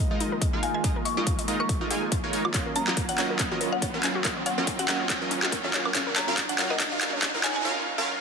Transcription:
Already playing: D#3 F3 G#3 A#3 F4, riser
0.11 A#1 G#3 D#4 F4 A#4 D#5
0.20 D#4, closed hi-hat
0.32 A#4
0.42 D#5, kick, closed hi-hat
0.53 A#1 G#3 D#4 F4 A#4 F5
0.63 F5 G#5, closed hi-hat
0.74 D#5 G#5
0.84 G#3 D#4 F4 A#4 D#5, kick, closed hi-hat
0.96 A#4
1.05 D#5 C#6, closed hi-hat
1.17 A#1 G#3 D#4 F4 A#4 D#5 C#6
1.27 F5, kick, closed hi-hat
1.39 D#5, closed hi-hat
1.48 A#1 G#3 D#4 F4 A#4 D#5, closed hi-hat
1.60 A#4 C#6
1.69 D#5, kick, closed hi-hat
1.81 A#1 G#3 D#4 F4 A#4 D#5
1.90 A#1 G#3 D#4 F4 A#4 F5 G#5, closed hi-hat
2.02 G#4
2.12 F4, kick, closed hi-hat
2.24 A#1 G#3 D#4 F4 A#4 C#5
2.33 A#1 G#3 D#4 F4 A#4 C#5, closed hi-hat
2.45 F4, high woodblock
2.54 D#3 F#3 C#4 F4 A#4 C#5 D#5, kick, clap, closed hi-hat
2.66 A#4
2.76 C#4 A#5, closed hi-hat
2.87 D#1 F#3 C#4 F4 F#4 A#4 D#5, clap
2.97 A#4, kick, closed hi-hat
3.09 C#5 F#5, closed hi-hat
3.18 F#3 C#4 F4 A#4 C#5 D#5 F#5, clap, closed hi-hat
3.30 A#4
3.39 C#4, kick, clap, closed hi-hat
3.51 F#3 C#4 F4 F#4 A#4 D#5
3.61 A#4, closed hi-hat
3.72 C#5 F#5
3.82 C#5, kick, closed hi-hat
3.94 F#3 C#4 F4 A#4 F5
4.03 C#4, clap, closed hi-hat
4.15 F#4
4.25 F#3 C#4 F4 A#4 D#5, kick, clap, closed hi-hat
4.37 C#5
4.46 C#5 F#5, closed hi-hat
4.58 F#3 C#4 F4 A#4 D#5
4.67 C#4, kick, closed hi-hat
4.79 F#4 F#5, closed hi-hat
4.88 F#3 C#4 F4 A#4 D#5 F#5, clap, closed hi-hat
5.00 C#5
5.10 C#5, kick, clap, closed hi-hat
5.21 F#3 C#4 F4 A#4 D#5
5.31 C#4, closed hi-hat
5.43 F#4, clap
5.52 A#4, kick, closed hi-hat
5.64 F#3 C#4 F4 A#4 C#5 F5
5.74 C#5, clap, closed hi-hat
5.85 A#4, high woodblock
5.95 F#1 C#3 F#3 C#4 F4 A#4 F5, kick, clap, closed hi-hat
6.07 A#4
6.16 C#5 A#5, clap, closed hi-hat
6.28 F#1 F#3 C#4 F4 A#4 F5
6.37 F5, kick, clap, closed hi-hat
6.49 C#5 F#5, closed hi-hat
6.59 F#3 C#4 F4 A#4 F5 F#5, clap, closed hi-hat
6.70 A#4 D#5
6.80 C#5, kick, clap, closed hi-hat
6.92 F#3 C#4 F4 A#4 F5
7.01 F5, clap, closed hi-hat
7.13 C#5
7.22 C#4, kick, clap, closed hi-hat
7.34 F#3 C#4 F4 A#4 F#5
7.44 C#5 G#5, clap, closed hi-hat
7.56 F5 G#5
7.65 F#3 C#4 F4 A#4 F5
7.98 F#3 C#4 F4 A#4 F5

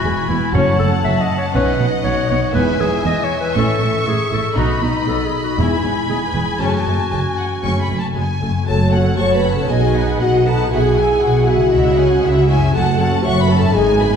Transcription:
Already playing: E2 B2 B3 E4 F#4 G#5 B5
0.04 E1 E2 G#3 B4
0.21 E4
0.29 E1 E2 B3 E4
0.38 B4
0.53 F#1 F#2 A3 C#4 F#4 C#5 F#5 A5
0.71 F#3
0.79 F#1 F#2 A3 A4
0.88 C#4
1.04 F#1 F#2 F#3 A4 E5
1.21 F#4 D#5
1.38 A4 C#5
1.54 B1 B2 C#4 D#4 B4 D#5 F#5
1.72 F#3
1.79 B1 B2 B3
1.88 D#4
2.03 B1 B2 F#3 C#5
2.22 F#4
2.29 B1 B2 B3 C#5
2.38 C#5
2.54 E1 E2 G#3 B3 E4 B4 E5 G#5
2.71 G#3
2.79 E1 E2 G#3 G#4
2.88 E4
3.04 E1 E2 E3 D#5 E5
3.22 G#4 C#5
3.39 B4 E5
3.55 A1 A2 C#4 E4 A4 C#6
3.73 C#4
3.81 A1 A2 A3
3.90 E4
4.06 A1 A2 E3 G#4 E5
4.23 C#5
4.32 A1 A2 A3 A4
4.40 E5
4.56 B1 B2 B3 D#4 F#4 D#5 B5
4.74 B3
4.82 B1 B2 B3 D#4
4.91 D#4
5.07 B1 B2 F#3 A4 B4
5.24 D#4 G#4
5.41 F#4 B4
5.58 E1 E2 B3 E4 G#4 G#5
5.75 B3
5.83 E1 E2 B3
5.92 E4
6.08 E1 E2 G#3 G#4
6.26 B4
6.34 E1 E2 B3 G#4
6.43 B4
6.59 F#1 F#2 A3 C#4 F#4 G#4 A5
6.78 A3
6.86 F#1 F#2 A3
6.95 C#4
7.11 F#1 F#2 G#3 G#4 A5
7.29 A4
7.37 F#5
7.46 G#4
7.63 F#1 F#2 C#3 A3 C#4 G#4 C#6
7.80 A3 B5
7.89 F#1 F#2 A3
7.98 C#4 A5
8.15 F#1 F#2 G#3 G#4 G#5
8.32 A4
8.41 F#1 F#2 A3
8.49 F#2 G#4
8.53 A3
8.58 C#4
8.62 F#4
8.67 F#1 F#2 A3 F#4 A4 C#5 A5
8.92 C#4 F#4 A4 F#5
9.17 F#1 F#2 A3 F#4 C#5 A5 C#6
9.34 B4 B5
9.43 C#4 A4 F#5
9.52 B2 A4 A5
9.56 B3
9.61 D#4
9.65 B1 B2 F#4 G#4 D#5
9.69 B3 D#5 G#5
9.94 D#4 B4 F#5
10.20 B1 B2 B3 F#4 D#5 F#5
10.45 D#4 A4 B4 F#5 A5
10.53 B2
10.58 B3
10.62 E4
10.67 B2 F#4
10.71 B1 F#4 G#4 E5 F#5 G#5
10.96 E4 G#4 G#5
11.22 B1 B2 F#4 G#4 F#5
11.47 E4 F#4 G#4 E5 F#5 G#5
11.55 C#3
11.60 G#3
11.64 E4
11.69 G#3 E4 C#5 D#5
11.73 C#2 C#3 E5
11.98 C#4 G#4 C#5 G#5
12.23 C#2 C#3 G#3 E4 E5
12.48 C#4 E4 G#4 E5 G#5
12.56 F#2
12.61 A3
12.65 F#4
12.69 C#5
12.74 F#1 F#2 A3 F#4 A4 F#5 A5
12.99 C#4 F#4 A4 F#5 A5
13.23 F#1 F#2 A3 F#4 C#5 E5 F#5 C#6
13.40 B4 B5
13.49 C#4 A4 A5
13.56 G#2 A4 A5
13.61 B3
13.66 D#4
13.70 G#4
13.74 G#1 G#2 G#3 D#4 D#5 G#5
14.00 B3 G#4 B4 B5

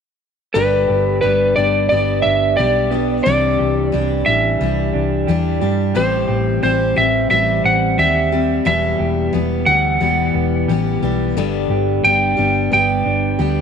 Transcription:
0.54 G1 G2 D3 G3 B3 D4 G4 B4
0.88 G1 G4
1.21 G1 G3 B3 D4 G4 B4
1.56 G1 G3 B3 D4 G4 D5
1.89 G1 G3 B3 D4 D5
1.94 G4
2.22 G1 D4 E5
2.56 B1 G3 B3 D4 G4 D5
2.61 G4
2.91 G3 B3 D4 G4
3.24 C2 C3 E3 G3 D4 G4 D5
3.59 C2 G4
3.92 C2 E3 G3 D4 G4
4.26 A1 E3 G3 D4 G4 E5
4.61 C2 E3 G3 D4 G4
4.94 C2 D4
5.28 E2 E3 G3 D4 G4
5.61 G2 G3 D4 G4
5.95 A1 A2 E3 G3 C4 G4 C5
6.28 A1 G4
6.63 A1 E3 G3 C4 G4 C5
6.96 A1 E3 G3 C4 G4 E5
7.30 A1 E3 G3 C4 G4 E5
7.64 A1 C4 F#5
7.98 D#2 G3 C4 G4 E5
8.32 G3 C4 G4
8.65 E1 E2 B2 E3 G3 B3 G4 E5
8.99 E1 G4
9.33 E1 E3 G3 B3 G4
9.66 D2 E3 G3 B3 G4 F#5
10.01 E1 E3 G3 B3 G4
10.34 E1 B3
10.68 A1 E3 G3 B3 G4
11.02 B1 E3 G3 B3 G4
11.36 G1 G2 D3 G3 B3 D4 G4
11.70 G1 G4
12.04 G1 G3 B3 D4 G4 G5
12.37 G1 G3 B3 D4 G4
12.72 G1 G3 B3 D4 G4 G5
13.05 G1 D4
13.39 D2 G3 B3 D4 G4

